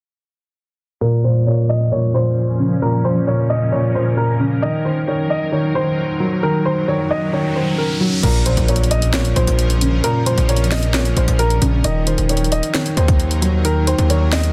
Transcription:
1.01 1.23 A#2 medium
1.01 4.59 F3 medium
1.01 4.59 C#4 medium
1.01 8.19 A#4 medium
1.01 1.22 A#4 medium
1.24 1.45 A#2 medium
1.24 1.45 C5 medium
1.47 1.90 A#2 medium
1.47 1.67 C#5 medium
1.69 1.90 D#5 medium
1.92 2.12 A#2 medium
1.92 2.12 C#5 medium
2.14 2.81 A#2 medium
2.14 2.78 C5 medium
2.60 3.72 C#3 medium
2.82 3.03 A#2 medium
2.82 3.02 A#4 medium
3.04 3.26 A#2 medium
3.04 3.25 C5 medium
3.27 3.71 A#2 medium
3.27 3.48 C#5 medium
3.50 3.70 D#5 medium
3.72 3.93 A#2 medium
3.72 3.93 C#5 medium
3.95 4.63 A#2 medium
3.95 4.15 C5 medium
4.17 4.38 A#4 medium
4.40 4.62 C#3 medium
4.62 4.84 D#3 medium
4.62 8.20 F#3 medium
4.62 6.41 D#4 medium
4.62 4.83 D#5 medium
4.85 5.07 D#3 medium
4.85 5.06 C5 medium
5.08 5.51 D#3 medium
5.08 5.28 C#5 medium
5.30 5.51 D#5 medium
5.52 5.74 D#3 medium
5.52 5.73 C#5 medium
5.75 6.41 D#3 medium
5.75 6.39 C5 medium
6.20 7.33 F#3 medium
6.43 6.63 D#3 loud
6.43 8.22 C#4 medium
6.43 6.63 A#4 medium
6.43 riser medium
6.65 6.87 D#3 medium
6.65 6.86 C5 medium
6.88 7.32 D#3 medium
6.88 7.08 C#5 medium
7.11 7.31 D#5 medium
7.33 7.54 D#3 medium
7.33 7.54 C#5 medium
7.56 8.23 D#3 medium
7.56 7.76 C5 medium
7.78 7.99 A#4 medium
8.00 8.23 F#3 medium
8.23 8.56 A#1 loud
8.23 8.45 A#2 loud
8.23 11.81 F3 medium
8.23 11.81 C#4 medium
8.23 8.44 A#4 medium
8.23 11.81 A#4 medium
8.23 closed hi-hat medium
8.23 crash loud
8.23 impact medium
8.46 8.67 A#2 medium
8.46 8.66 C5 medium
8.46 closed hi-hat medium
8.57 9.33 A#1 loud
8.57 closed hi-hat medium
8.68 9.12 A#2 medium
8.68 8.89 C#5 medium
8.68 closed hi-hat medium
8.76 closed hi-hat medium
8.84 closed hi-hat soft
8.91 9.11 D#5 medium
8.91 closed hi-hat medium
9.02 closed hi-hat medium
9.13 9.34 A#2 medium
9.13 9.34 C#5 medium
9.13 finger snap loud
9.13 snare loud
9.13 closed hi-hat medium
9.25 closed hi-hat medium
9.36 9.47 A#1 loud
9.36 10.02 A#2 medium
9.36 10.00 C5 medium
9.36 closed hi-hat medium
9.47 10.02 A#1 loud
9.47 closed hi-hat medium
9.59 closed hi-hat medium
9.70 closed hi-hat medium
9.81 10.94 C#3 medium
9.81 closed hi-hat medium
10.04 10.24 A#2 loud
10.04 10.24 A#4 medium
10.04 closed hi-hat medium
10.26 10.48 A#2 medium
10.26 10.47 C5 medium
10.26 closed hi-hat medium
10.38 11.13 A#1 loud
10.38 closed hi-hat medium
10.49 10.93 A#2 medium
10.49 10.69 C#5 medium
10.49 closed hi-hat medium
10.56 closed hi-hat medium
10.64 closed hi-hat soft
10.71 10.92 D#5 medium
10.71 finger snap medium
10.71 snare loud
10.71 open hi-hat medium
10.83 closed hi-hat medium
10.94 11.15 A#2 medium
10.94 11.14 C#5 medium
10.94 finger snap loud
10.94 snare loud
10.94 closed hi-hat medium
11.05 closed hi-hat medium
11.17 11.27 A#1 loud
11.17 11.84 A#2 medium
11.17 11.37 C5 medium
11.17 closed hi-hat medium
11.28 11.60 A#1 loud
11.28 closed hi-hat medium
11.39 11.60 A#4 medium
11.39 closed hi-hat medium
11.50 closed hi-hat medium
11.61 11.83 A#1 loud
11.61 11.84 C#3 medium
11.61 closed hi-hat medium
11.84 12.17 D#1 loud
11.84 12.05 D#3 medium
11.84 14.53 F#3 medium
11.84 13.63 D#4 medium
11.84 14.53 A#4 medium
11.84 12.05 D#5 loud
11.84 closed hi-hat medium
12.07 12.28 D#3 medium
12.07 12.27 C5 medium
12.07 closed hi-hat medium
12.18 12.61 D#1 loud
12.18 closed hi-hat medium
12.29 12.72 D#3 medium
12.29 12.50 C#5 medium
12.29 closed hi-hat medium
12.37 closed hi-hat medium
12.44 closed hi-hat soft
12.52 12.72 D#5 medium
12.52 closed hi-hat medium
12.63 closed hi-hat medium
12.74 12.95 D#3 loud
12.74 12.95 C#5 medium
12.74 finger snap loud
12.74 snare loud
12.74 closed hi-hat medium
12.86 closed hi-hat medium
12.97 13.95 D#2 loud
12.97 13.63 D#3 medium
12.97 13.61 C5 medium
12.97 closed hi-hat medium
13.08 kick loud
13.08 closed hi-hat medium
13.20 closed hi-hat medium
13.31 closed hi-hat medium
13.42 14.53 F#3 medium
13.42 closed hi-hat medium
13.65 13.85 D#3 loud
13.65 14.53 F4 medium
13.65 13.85 A#4 medium
13.65 closed hi-hat medium
13.87 14.09 D#3 medium
13.87 14.08 C5 medium
13.87 closed hi-hat loud
13.99 14.53 D#2 loud
13.99 closed hi-hat medium
14.10 14.53 D#3 medium
14.10 14.30 C#5 medium
14.10 closed hi-hat medium
14.32 14.53 D#5 medium
14.32 finger snap medium
14.32 snare loud
14.32 open hi-hat medium
14.44 closed hi-hat medium

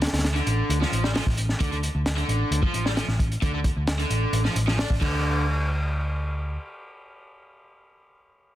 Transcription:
0.02 snare medium
0.02 closed hi-hat medium
0.06 snare medium
0.06 closed hi-hat medium
0.13 0.40 D2 loud
0.13 snare medium
0.13 closed hi-hat medium
0.19 snare medium
0.19 closed hi-hat medium
0.24 snare loud
0.24 closed hi-hat medium
0.36 0.80 D3 medium
0.36 closed hi-hat soft
0.47 0.61 A1 medium
0.47 closed hi-hat medium
0.69 0.83 D2 loud
0.69 closed hi-hat medium
0.81 1.02 F3 medium
0.81 snare soft
0.92 1.19 A1 medium
0.92 closed hi-hat medium
1.04 1.08 G3 medium
1.04 snare medium
1.15 1.23 F3 medium
1.15 snare loud
1.15 open hi-hat medium
1.26 1.53 A1 medium
1.26 kick medium
1.37 closed hi-hat medium
1.49 snare soft
1.60 1.87 D2 medium
1.60 1.71 D3 medium
1.60 kick loud
1.60 closed hi-hat medium
1.72 1.77 D3 medium
1.72 closed hi-hat soft
1.83 closed hi-hat medium
1.95 2.22 D2 medium
2.06 snare loud
2.06 closed hi-hat medium
2.17 2.61 D3 medium
2.17 closed hi-hat soft
2.28 2.42 A1 medium
2.28 closed hi-hat medium
2.51 2.65 D2 medium
2.51 closed hi-hat medium
2.62 2.84 F3 medium
2.62 kick medium
2.74 3.01 A1 medium
2.74 closed hi-hat medium
2.85 2.90 G3 medium
2.85 snare soft
2.96 3.05 F3 medium
2.96 snare loud
2.96 closed hi-hat medium
3.08 3.35 A1 medium
3.08 snare soft
3.19 kick medium
3.19 closed hi-hat medium
3.32 closed hi-hat soft
3.42 3.69 D2 medium
3.42 3.52 D3 medium
3.42 kick loud
3.42 closed hi-hat medium
3.54 3.59 D3 medium
3.64 kick medium
3.64 closed hi-hat medium
3.76 4.03 D2 medium
3.87 snare loud
3.87 closed hi-hat medium
3.99 4.43 D3 medium
3.99 closed hi-hat soft
4.10 4.24 A1 medium
4.10 closed hi-hat medium
4.33 4.47 A1 loud
4.33 closed hi-hat medium
4.45 4.55 F3 medium
4.45 snare soft
4.55 4.83 A1 medium
4.55 closed hi-hat medium
4.67 4.77 F3 medium
4.67 snare medium
4.78 4.89 D4 medium
4.78 snare loud
4.78 open hi-hat medium
4.90 5.01 A1 medium
4.90 kick medium
5.01 6.56 D2 medium
5.01 5.43 D3 medium
5.01 kick loud
5.01 crash medium

